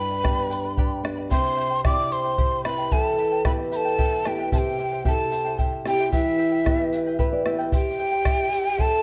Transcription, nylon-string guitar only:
0, 0, Header, 1, 2, 480
1, 0, Start_track
1, 0, Tempo, 534759
1, 1178, Time_signature, 6, 3, 24, 8
1, 8101, End_track
2, 0, Start_track
2, 0, Title_t, "Nylon-string guitar"
2, 0, Program_c, 0, 24
2, 0, Note_on_c, 0, 43, 69
2, 213, Note_on_c, 0, 59, 48
2, 219, Note_on_c, 0, 62, 44
2, 223, Note_on_c, 0, 67, 53
2, 681, Note_off_c, 0, 59, 0
2, 684, Note_off_c, 0, 67, 0
2, 685, Note_off_c, 0, 62, 0
2, 929, Note_on_c, 0, 59, 49
2, 938, Note_on_c, 0, 62, 47
2, 943, Note_on_c, 0, 67, 57
2, 1145, Note_off_c, 0, 43, 0
2, 1166, Note_off_c, 0, 59, 0
2, 1171, Note_off_c, 0, 62, 0
2, 1173, Note_off_c, 0, 67, 0
2, 1184, Note_on_c, 0, 48, 71
2, 1658, Note_on_c, 0, 60, 50
2, 1661, Note_on_c, 0, 64, 42
2, 1668, Note_on_c, 0, 67, 56
2, 2125, Note_off_c, 0, 60, 0
2, 2125, Note_off_c, 0, 64, 0
2, 2130, Note_off_c, 0, 67, 0
2, 2384, Note_on_c, 0, 60, 50
2, 2388, Note_on_c, 0, 64, 46
2, 2394, Note_on_c, 0, 67, 54
2, 2588, Note_off_c, 0, 48, 0
2, 2616, Note_off_c, 0, 60, 0
2, 2617, Note_off_c, 0, 64, 0
2, 2621, Note_off_c, 0, 67, 0
2, 2631, Note_on_c, 0, 52, 68
2, 3107, Note_on_c, 0, 59, 50
2, 3111, Note_on_c, 0, 67, 50
2, 3113, Note_on_c, 0, 64, 46
2, 3570, Note_off_c, 0, 59, 0
2, 3572, Note_off_c, 0, 67, 0
2, 3573, Note_off_c, 0, 64, 0
2, 3821, Note_on_c, 0, 59, 52
2, 3825, Note_on_c, 0, 64, 47
2, 3830, Note_on_c, 0, 67, 57
2, 4031, Note_off_c, 0, 52, 0
2, 4054, Note_off_c, 0, 59, 0
2, 4057, Note_off_c, 0, 64, 0
2, 4058, Note_off_c, 0, 67, 0
2, 4061, Note_on_c, 0, 48, 70
2, 4527, Note_on_c, 0, 60, 49
2, 4535, Note_on_c, 0, 64, 45
2, 4537, Note_on_c, 0, 67, 56
2, 5000, Note_off_c, 0, 60, 0
2, 5002, Note_off_c, 0, 64, 0
2, 5004, Note_off_c, 0, 67, 0
2, 5252, Note_on_c, 0, 60, 51
2, 5256, Note_on_c, 0, 67, 56
2, 5258, Note_on_c, 0, 64, 48
2, 5464, Note_off_c, 0, 48, 0
2, 5488, Note_off_c, 0, 60, 0
2, 5491, Note_off_c, 0, 64, 0
2, 5491, Note_off_c, 0, 67, 0
2, 5496, Note_on_c, 0, 52, 69
2, 5979, Note_on_c, 0, 59, 51
2, 5984, Note_on_c, 0, 64, 44
2, 5989, Note_on_c, 0, 67, 52
2, 6443, Note_off_c, 0, 59, 0
2, 6446, Note_off_c, 0, 64, 0
2, 6449, Note_off_c, 0, 67, 0
2, 6459, Note_on_c, 0, 71, 67
2, 6570, Note_off_c, 0, 71, 0
2, 6576, Note_on_c, 0, 74, 72
2, 6688, Note_off_c, 0, 74, 0
2, 6689, Note_on_c, 0, 59, 47
2, 6693, Note_on_c, 0, 64, 45
2, 6695, Note_on_c, 0, 67, 56
2, 6697, Note_on_c, 0, 76, 67
2, 6898, Note_off_c, 0, 52, 0
2, 6918, Note_off_c, 0, 76, 0
2, 6925, Note_off_c, 0, 59, 0
2, 6927, Note_off_c, 0, 64, 0
2, 6928, Note_off_c, 0, 67, 0
2, 8101, End_track
0, 0, End_of_file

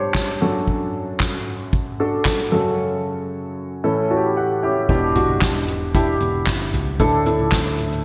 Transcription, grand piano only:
0, 0, Header, 1, 2, 480
1, 0, Start_track
1, 0, Tempo, 526917
1, 615, Time_signature, 4, 2, 24, 8
1, 7330, End_track
2, 0, Start_track
2, 0, Title_t, "Grand piano"
2, 0, Program_c, 0, 0
2, 0, Control_c, 0, 64, 127
2, 0, Note_on_c, 0, 43, 51
2, 0, Note_on_c, 0, 50, 54
2, 0, Note_on_c, 0, 62, 59
2, 0, Note_on_c, 0, 67, 55
2, 0, Note_on_c, 0, 71, 62
2, 0, Note_on_c, 0, 72, 57
2, 0, Note_on_c, 0, 73, 71
2, 255, Note_off_c, 0, 62, 0
2, 255, Note_off_c, 0, 67, 0
2, 284, Note_off_c, 0, 73, 0
2, 339, Note_off_c, 0, 43, 0
2, 339, Note_off_c, 0, 50, 0
2, 378, Note_on_c, 0, 66, 61
2, 379, Note_on_c, 0, 42, 54
2, 380, Note_on_c, 0, 62, 57
2, 381, Note_on_c, 0, 54, 54
2, 381, Note_on_c, 0, 69, 71
2, 386, Control_c, 0, 64, 0
2, 390, Note_off_c, 0, 71, 0
2, 393, Note_off_c, 0, 72, 0
2, 563, Control_c, 0, 64, 127
2, 1144, Note_off_c, 0, 66, 0
2, 1145, Note_off_c, 0, 62, 0
2, 1145, Note_off_c, 0, 69, 0
2, 1820, Note_on_c, 0, 66, 53
2, 1821, Note_on_c, 0, 62, 66
2, 1821, Note_on_c, 0, 69, 72
2, 2175, Note_off_c, 0, 62, 0
2, 2175, Note_off_c, 0, 66, 0
2, 2175, Note_off_c, 0, 69, 0
2, 2260, Note_off_c, 0, 42, 0
2, 2261, Note_off_c, 0, 54, 0
2, 2294, Note_on_c, 0, 42, 49
2, 2294, Note_on_c, 0, 49, 50
2, 2294, Note_on_c, 0, 61, 62
2, 2294, Note_on_c, 0, 69, 72
2, 2295, Note_on_c, 0, 66, 56
2, 2307, Control_c, 0, 64, 0
2, 2473, Control_c, 0, 64, 127
2, 3062, Note_off_c, 0, 61, 0
2, 3062, Note_off_c, 0, 69, 0
2, 3063, Note_off_c, 0, 66, 0
2, 3458, Note_off_c, 0, 42, 0
2, 3458, Note_off_c, 0, 49, 0
2, 3496, Note_on_c, 0, 45, 59
2, 3496, Note_on_c, 0, 61, 71
2, 3497, Note_on_c, 0, 52, 59
2, 3498, Note_on_c, 0, 69, 76
2, 3500, Note_on_c, 0, 64, 59
2, 3505, Control_c, 0, 64, 0
2, 3642, Control_c, 0, 64, 127
2, 3687, Note_off_c, 0, 61, 0
2, 3688, Note_off_c, 0, 69, 0
2, 3689, Note_off_c, 0, 64, 0
2, 3737, Note_on_c, 0, 61, 61
2, 3737, Note_on_c, 0, 66, 59
2, 3737, Note_on_c, 0, 81, 55
2, 3739, Note_on_c, 0, 64, 55
2, 3794, Note_off_c, 0, 66, 0
2, 3797, Note_on_c, 0, 67, 69
2, 3959, Note_off_c, 0, 81, 0
2, 3981, Note_on_c, 0, 78, 61
2, 4093, Note_off_c, 0, 61, 0
2, 4094, Note_off_c, 0, 64, 0
2, 4123, Note_off_c, 0, 67, 0
2, 4201, Note_off_c, 0, 78, 0
2, 4216, Note_on_c, 0, 64, 56
2, 4217, Note_on_c, 0, 67, 68
2, 4217, Note_on_c, 0, 76, 47
2, 4218, Note_on_c, 0, 61, 56
2, 4394, Note_off_c, 0, 64, 0
2, 4395, Note_off_c, 0, 61, 0
2, 4395, Note_off_c, 0, 67, 0
2, 4419, Note_off_c, 0, 45, 0
2, 4419, Note_off_c, 0, 52, 0
2, 4439, Note_off_c, 0, 76, 0
2, 4456, Note_on_c, 0, 47, 61
2, 4457, Note_on_c, 0, 62, 63
2, 4458, Note_on_c, 0, 64, 59
2, 4459, Note_on_c, 0, 67, 80
2, 4466, Control_c, 0, 64, 0
2, 4607, Control_c, 0, 64, 127
2, 4634, Note_off_c, 0, 62, 0
2, 4635, Note_off_c, 0, 64, 0
2, 4635, Note_off_c, 0, 67, 0
2, 4695, Note_on_c, 0, 62, 60
2, 4696, Note_on_c, 0, 64, 49
2, 4696, Note_on_c, 0, 66, 65
2, 5139, Note_off_c, 0, 47, 0
2, 5231, Note_off_c, 0, 62, 0
2, 5231, Note_off_c, 0, 64, 0
2, 5232, Note_off_c, 0, 66, 0
2, 5416, Note_on_c, 0, 62, 67
2, 5416, Note_on_c, 0, 64, 65
2, 5417, Note_on_c, 0, 67, 78
2, 6130, Note_off_c, 0, 62, 0
2, 6130, Note_off_c, 0, 64, 0
2, 6131, Note_off_c, 0, 67, 0
2, 6374, Note_on_c, 0, 62, 75
2, 6375, Note_on_c, 0, 69, 84
2, 6377, Note_on_c, 0, 64, 63
2, 6378, Note_on_c, 0, 45, 63
2, 6385, Control_c, 0, 64, 0
2, 6553, Note_off_c, 0, 62, 0
2, 6553, Note_off_c, 0, 69, 0
2, 6554, Note_off_c, 0, 64, 0
2, 6555, Control_c, 0, 64, 127
2, 6616, Note_on_c, 0, 69, 64
2, 6618, Note_on_c, 0, 62, 66
2, 6618, Note_on_c, 0, 64, 60
2, 7060, Note_off_c, 0, 45, 0
2, 7152, Note_off_c, 0, 62, 0
2, 7152, Note_off_c, 0, 69, 0
2, 7153, Note_off_c, 0, 64, 0
2, 7330, End_track
0, 0, End_of_file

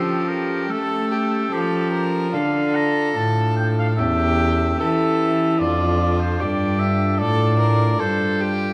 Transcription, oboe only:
0, 0, Header, 1, 2, 480
1, 0, Start_track
1, 0, Key_signature, -1, "minor"
1, 0, Tempo, 818554
1, 1370, Time_signature, 4, 2, 24, 8
1, 2812, Tempo, 803213
1, 5165, End_track
2, 0, Start_track
2, 0, Title_t, "Oboe"
2, 0, Program_c, 0, 68
2, 0, Note_on_c, 0, 69, 69
2, 167, Note_on_c, 0, 70, 74
2, 176, Note_off_c, 0, 69, 0
2, 412, Note_on_c, 0, 69, 78
2, 421, Note_off_c, 0, 70, 0
2, 895, Note_on_c, 0, 67, 78
2, 904, Note_off_c, 0, 69, 0
2, 1208, Note_off_c, 0, 67, 0
2, 1367, Note_on_c, 0, 77, 87
2, 1612, Note_on_c, 0, 82, 91
2, 1621, Note_off_c, 0, 77, 0
2, 1854, Note_on_c, 0, 81, 78
2, 1863, Note_off_c, 0, 82, 0
2, 2086, Note_off_c, 0, 81, 0
2, 2090, Note_on_c, 0, 79, 81
2, 2145, Note_off_c, 0, 79, 0
2, 2223, Note_on_c, 0, 77, 70
2, 2276, Note_off_c, 0, 77, 0
2, 2329, Note_on_c, 0, 76, 94
2, 2799, Note_off_c, 0, 76, 0
2, 2808, Note_on_c, 0, 76, 84
2, 3287, Note_on_c, 0, 74, 91
2, 3296, Note_off_c, 0, 76, 0
2, 3644, Note_off_c, 0, 74, 0
2, 3648, Note_on_c, 0, 72, 81
2, 3768, Note_on_c, 0, 74, 86
2, 3777, Note_off_c, 0, 72, 0
2, 4005, Note_on_c, 0, 76, 82
2, 4014, Note_off_c, 0, 74, 0
2, 4239, Note_on_c, 0, 74, 97
2, 4248, Note_off_c, 0, 76, 0
2, 4722, Note_on_c, 0, 72, 90
2, 4731, Note_off_c, 0, 74, 0
2, 5044, Note_off_c, 0, 72, 0
2, 5165, End_track
0, 0, End_of_file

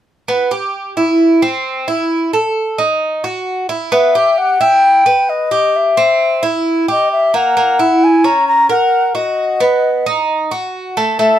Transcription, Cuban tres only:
0, 0, Header, 1, 2, 480
1, 0, Start_track
1, 0, Key_signature, 1, "minor"
1, 0, Tempo, 454545
1, 300, Time_signature, 4, 2, 24, 8
1, 12028, End_track
2, 0, Start_track
2, 0, Title_t, "Cuban tres"
2, 0, Program_c, 0, 25
2, 299, Note_on_c, 0, 59, 68
2, 533, Note_off_c, 0, 59, 0
2, 541, Note_on_c, 0, 67, 64
2, 1007, Note_off_c, 0, 67, 0
2, 1023, Note_on_c, 0, 64, 67
2, 1489, Note_off_c, 0, 64, 0
2, 1503, Note_on_c, 0, 60, 73
2, 1970, Note_off_c, 0, 60, 0
2, 1983, Note_on_c, 0, 64, 67
2, 2450, Note_off_c, 0, 64, 0
2, 2464, Note_on_c, 0, 69, 66
2, 2931, Note_off_c, 0, 69, 0
2, 2941, Note_on_c, 0, 63, 65
2, 3409, Note_off_c, 0, 63, 0
2, 3421, Note_on_c, 0, 66, 63
2, 3889, Note_off_c, 0, 66, 0
2, 3898, Note_on_c, 0, 64, 66
2, 4135, Note_off_c, 0, 64, 0
2, 4138, Note_on_c, 0, 59, 76
2, 4375, Note_off_c, 0, 59, 0
2, 4384, Note_on_c, 0, 67, 70
2, 4851, Note_off_c, 0, 67, 0
2, 4864, Note_on_c, 0, 64, 70
2, 5331, Note_off_c, 0, 64, 0
2, 5342, Note_on_c, 0, 71, 64
2, 5810, Note_off_c, 0, 71, 0
2, 5821, Note_on_c, 0, 67, 66
2, 6290, Note_off_c, 0, 67, 0
2, 6307, Note_on_c, 0, 60, 76
2, 6773, Note_off_c, 0, 60, 0
2, 6787, Note_on_c, 0, 64, 75
2, 7253, Note_off_c, 0, 64, 0
2, 7269, Note_on_c, 0, 67, 64
2, 7734, Note_off_c, 0, 67, 0
2, 7750, Note_on_c, 0, 58, 74
2, 7981, Note_off_c, 0, 58, 0
2, 7992, Note_on_c, 0, 58, 75
2, 8222, Note_off_c, 0, 58, 0
2, 8230, Note_on_c, 0, 64, 66
2, 8694, Note_off_c, 0, 64, 0
2, 8705, Note_on_c, 0, 61, 73
2, 9171, Note_off_c, 0, 61, 0
2, 9181, Note_on_c, 0, 70, 63
2, 9648, Note_off_c, 0, 70, 0
2, 9659, Note_on_c, 0, 66, 68
2, 10127, Note_off_c, 0, 66, 0
2, 10142, Note_on_c, 0, 59, 77
2, 10608, Note_off_c, 0, 59, 0
2, 10627, Note_on_c, 0, 63, 70
2, 11091, Note_off_c, 0, 63, 0
2, 11102, Note_on_c, 0, 66, 66
2, 11568, Note_off_c, 0, 66, 0
2, 11584, Note_on_c, 0, 57, 76
2, 11806, Note_off_c, 0, 57, 0
2, 11818, Note_on_c, 0, 57, 73
2, 12028, Note_off_c, 0, 57, 0
2, 12028, End_track
0, 0, End_of_file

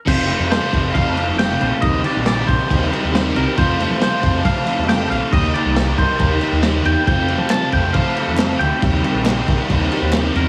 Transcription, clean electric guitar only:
0, 0, Header, 1, 2, 480
1, 0, Start_track
1, 0, Tempo, 437318
1, 78, Time_signature, 4, 2, 24, 8
1, 11508, End_track
2, 0, Start_track
2, 0, Title_t, "Clean electric guitar"
2, 0, Program_c, 0, 27
2, 86, Note_on_c, 0, 72, 88
2, 543, Note_off_c, 0, 72, 0
2, 556, Note_on_c, 0, 72, 79
2, 1029, Note_off_c, 0, 72, 0
2, 1034, Note_on_c, 0, 77, 86
2, 1483, Note_off_c, 0, 77, 0
2, 1519, Note_on_c, 0, 79, 96
2, 1988, Note_off_c, 0, 79, 0
2, 1992, Note_on_c, 0, 75, 94
2, 2244, Note_off_c, 0, 75, 0
2, 2253, Note_on_c, 0, 74, 85
2, 2481, Note_off_c, 0, 74, 0
2, 2494, Note_on_c, 0, 74, 84
2, 2714, Note_on_c, 0, 72, 88
2, 2735, Note_off_c, 0, 74, 0
2, 3689, Note_off_c, 0, 72, 0
2, 3693, Note_on_c, 0, 70, 81
2, 3923, Note_off_c, 0, 70, 0
2, 3927, Note_on_c, 0, 72, 90
2, 4407, Note_off_c, 0, 72, 0
2, 4420, Note_on_c, 0, 72, 88
2, 4889, Note_on_c, 0, 77, 103
2, 4906, Note_off_c, 0, 72, 0
2, 5357, Note_off_c, 0, 77, 0
2, 5361, Note_on_c, 0, 79, 104
2, 5596, Note_off_c, 0, 79, 0
2, 5601, Note_on_c, 0, 77, 95
2, 5841, Note_off_c, 0, 77, 0
2, 5846, Note_on_c, 0, 75, 106
2, 6077, Note_off_c, 0, 75, 0
2, 6081, Note_on_c, 0, 74, 93
2, 6567, Note_on_c, 0, 72, 90
2, 6577, Note_off_c, 0, 74, 0
2, 7527, Note_on_c, 0, 79, 91
2, 7554, Note_off_c, 0, 72, 0
2, 7752, Note_off_c, 0, 79, 0
2, 7765, Note_on_c, 0, 79, 106
2, 8231, Note_off_c, 0, 79, 0
2, 8235, Note_on_c, 0, 81, 100
2, 8462, Note_off_c, 0, 81, 0
2, 8487, Note_on_c, 0, 79, 94
2, 8703, Note_off_c, 0, 79, 0
2, 8707, Note_on_c, 0, 77, 98
2, 9427, Note_off_c, 0, 77, 0
2, 9431, Note_on_c, 0, 79, 92
2, 10111, Note_off_c, 0, 79, 0
2, 11374, Note_on_c, 0, 70, 81
2, 11508, Note_off_c, 0, 70, 0
2, 11508, End_track
0, 0, End_of_file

